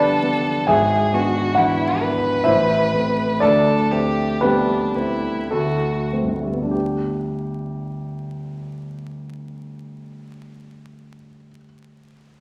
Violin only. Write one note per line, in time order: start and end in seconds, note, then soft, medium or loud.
0.00 0.68 A4 medium
0.69 1.15 G#4 medium
1.14 1.59 F#4 medium
1.57 2.03 E4 medium
2.02 3.43 B4 medium
3.42 3.93 A4 medium
3.91 4.44 G4 medium
4.42 4.97 D4 medium
4.96 5.52 E4 medium
5.52 6.12 F#4 soft